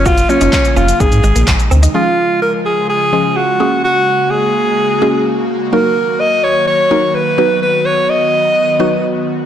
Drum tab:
HH |-x-x-x-x-x-x-x-x|----------------|----------------|----------------|
SH |xxxxxxxxxxxxxxxx|----------------|----------------|----------------|
CP |----x-------x---|----------------|----------------|----------------|
SD |----o-------o---|----------------|----------------|----------------|
BD |o---o---o---o---|----------------|----------------|----------------|

HH |----------------|
SH |----------------|
CP |----------------|
SD |----------------|
BD |----------------|